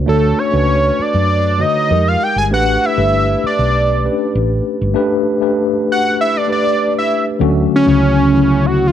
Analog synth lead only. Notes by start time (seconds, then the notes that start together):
0.09 A4
0.39 C#5
1.02 D5
1.61 D#5
2.08 F5
2.23 G5
2.38 G#5
2.54 F#5
2.85 E5
3.47 D5
5.92 F#5
6.21 E5
6.37 D5
6.52 D5
6.98 E5
7.76 C#4
8.66 F#4
8.88 F4